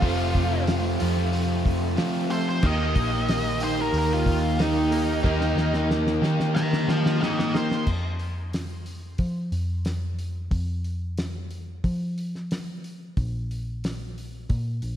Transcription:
0.00 0.32 F1 loud
0.00 0.99 F2 medium
0.00 0.99 C3 medium
0.00 0.99 F3 loud
0.00 2.61 A3 medium
0.00 2.60 C4 medium
0.00 1.08 C4 medium
0.00 0.64 F4 loud
0.00 2.60 F4 medium
0.00 1.08 F4 medium
0.00 1.08 C5 medium
0.00 kick loud
0.00 open hi-hat medium
0.04 0.99 A3 loud
0.04 1.08 A3 medium
0.04 0.99 C4 medium
0.04 0.98 F4 loud
0.35 0.97 F1 medium
0.35 kick medium
0.35 open hi-hat medium
0.67 snare loud
0.67 open hi-hat medium
0.99 1.95 F2 medium
0.99 1.63 F2 medium
0.99 1.95 C3 medium
0.99 1.96 F3 medium
0.99 1.97 A3 medium
0.99 1.97 C4 medium
0.99 1.96 F4 loud
0.99 open hi-hat medium
1.17 snare soft
1.33 open hi-hat medium
1.65 1.96 F2 medium
1.65 kick medium
1.65 open hi-hat medium
1.96 2.61 F2 medium
1.96 2.61 C3 medium
1.96 2.62 F3 medium
1.96 2.62 A3 medium
1.96 2.62 C4 medium
1.96 2.62 F4 medium
1.96 snare loud
1.96 open hi-hat medium
2.30 2.58 A3 medium
2.30 2.58 C4 medium
2.30 2.58 F4 medium
2.30 2.58 A4 medium
2.30 2.47 C5 loud
2.30 open hi-hat medium
2.49 2.64 C5 loud
2.62 2.93 D#2 loud
2.62 3.64 D#3 medium
2.62 3.68 A#3 medium
2.62 5.22 A#3 medium
2.62 3.63 A#3 loud
2.62 3.68 D#4 medium
2.62 5.22 D#4 medium
2.62 3.62 D#4 loud
2.62 3.68 G4 medium
2.62 5.22 G4 medium
2.62 3.61 G4 loud
2.62 3.68 A#4 medium
2.62 5.23 A#4 medium
2.62 3.60 D#5 loud
2.62 kick loud
2.62 crash loud
2.96 3.90 A#1 medium
2.96 kick medium
2.96 open hi-hat medium
3.28 snare loud
3.28 open hi-hat medium
3.60 4.57 D#3 medium
3.60 4.59 A#3 medium
3.60 4.58 D#4 medium
3.60 4.58 G4 medium
3.60 3.79 C5 loud
3.60 open hi-hat medium
3.82 3.96 A#4 loud
3.93 4.24 D#2 medium
3.93 open hi-hat medium
3.99 4.13 A#4 medium
4.13 4.60 F4 loud
4.26 5.21 D#2 loud
4.26 kick medium
4.26 open hi-hat medium
4.59 5.22 D#3 medium
4.59 5.23 A#3 medium
4.59 5.24 D#4 medium
4.59 5.88 D#4 loud
4.59 5.24 G4 medium
4.59 snare loud
4.59 open hi-hat medium
4.91 5.18 A#3 medium
4.91 5.18 D#4 medium
4.91 5.19 G4 medium
4.91 5.19 A#4 medium
4.91 open hi-hat medium
5.23 5.55 D#2 loud
5.23 6.20 D#3 loud
5.23 6.29 A#3 medium
5.23 6.21 A#3 loud
5.23 6.29 D#4 medium
5.23 7.85 D#4 medium
5.23 6.21 D#4 medium
5.23 6.29 G4 medium
5.23 7.84 G4 medium
5.23 6.20 G4 loud
5.23 6.29 A#4 medium
5.23 7.85 A#4 medium
5.23 kick loud
5.23 snare medium
5.41 snare medium
5.56 6.18 D#2 medium
5.56 snare medium
5.74 snare medium
5.91 snare medium
6.07 snare medium
6.21 6.84 D#3 loud
6.21 7.19 D#3 medium
6.21 7.20 A#3 medium
6.21 7.20 D#4 medium
6.21 7.19 G4 medium
6.21 snare medium
6.40 snare medium
6.55 6.88 G5 medium
6.55 6.88 A#5 loud
6.55 snare medium
6.73 snare medium
6.88 7.19 D#3 medium
6.88 7.20 C5 medium
6.88 7.21 F5 loud
6.88 snare medium
7.06 snare medium
7.20 7.85 D#3 medium
7.20 7.85 A#3 medium
7.20 7.86 D#4 medium
7.20 7.86 G4 medium
7.20 7.53 C5 medium
7.20 7.55 D#5 loud
7.20 snare medium
7.39 snare medium
7.54 7.81 A#3 medium
7.54 7.81 D#4 medium
7.54 7.81 G4 medium
7.54 7.81 A#4 medium
7.54 7.88 C5 loud
7.54 snare loud
7.71 snare medium
7.87 9.15 F2 medium
7.87 kick medium
7.87 crash medium
8.19 open hi-hat soft
8.53 snare medium
8.53 open hi-hat medium
8.86 open hi-hat soft
9.18 9.50 F3 medium
9.18 kick medium
9.18 open hi-hat medium
9.52 10.48 F2 medium
9.52 open hi-hat soft
9.85 snare medium
9.85 open hi-hat medium
10.19 open hi-hat soft
10.51 11.80 F2 medium
10.51 kick loud
10.51 open hi-hat medium
10.84 open hi-hat soft
11.18 snare loud
11.18 open hi-hat medium
11.51 open hi-hat soft
11.84 13.13 F3 medium
11.84 kick medium
11.84 open hi-hat medium
12.18 open hi-hat soft
12.35 snare soft
12.51 snare medium
12.51 open hi-hat soft
12.84 open hi-hat soft
13.17 14.46 A#1 medium
13.17 kick medium
13.17 open hi-hat medium
13.51 open hi-hat soft
13.84 snare loud
13.84 open hi-hat medium
14.18 open hi-hat soft
14.49 14.80 A#2 medium
14.49 kick medium
14.49 open hi-hat medium
14.82 14.96 A#1 medium
14.82 open hi-hat soft

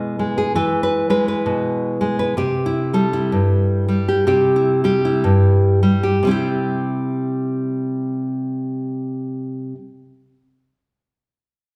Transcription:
0.00 0.55 B2 medium
0.00 0.55 E3 medium
0.00 0.18 G#3 medium
0.00 0.37 B4 medium
0.19 1.09 G#3 medium
0.38 0.55 G#4 medium
0.55 2.37 E3 medium
0.55 0.82 B4 medium
0.83 1.09 B4 medium
1.10 2.00 G#3 medium
1.10 1.27 B4 medium
1.28 2.18 B4 medium
1.46 2.33 B2 medium
2.01 2.33 G#3 medium
2.19 2.33 B4 medium
2.37 3.31 C3 medium
2.37 2.94 G4 medium
2.66 3.12 E4 medium
2.93 3.87 G3 medium
2.93 4.07 A4 medium
3.13 4.55 E4 medium
3.32 4.27 G2 medium
3.88 4.83 G3 medium
4.08 4.26 G4 medium
4.27 5.24 C3 medium
4.27 4.83 G4 medium
4.56 5.04 E4 medium
4.84 5.81 G3 medium
4.84 6.02 G4 medium
5.05 6.18 E4 medium
5.24 6.23 G2 medium
5.83 6.18 G3 medium
6.03 6.30 G4 medium
6.23 9.73 C3 medium
6.23 9.75 G3 medium
6.27 9.77 C4 medium
6.27 9.79 E4 medium
6.31 9.81 G4 medium

